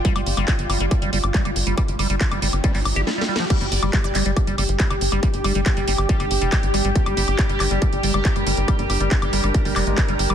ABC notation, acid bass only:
X:1
M:4/4
L:1/16
Q:1/4=139
K:Gm
V:1 name="Acid bass" clef=bass
G, G, z G, z2 G, G, z G, G, z G, G, z G, | z2 G, G, z G, G, z G, G, z G G, G, G, F, | G, G, z G, G, z G, G, z G, G, z G, G, z G, | G, z G, G, z G, G, z G, G, z G, G, z G, G, |
z G, G, z G, G, z G, z2 G, G, z G, G, z | G, G, z G, G, z G, G, z G, G, _A, G, G, z G, |]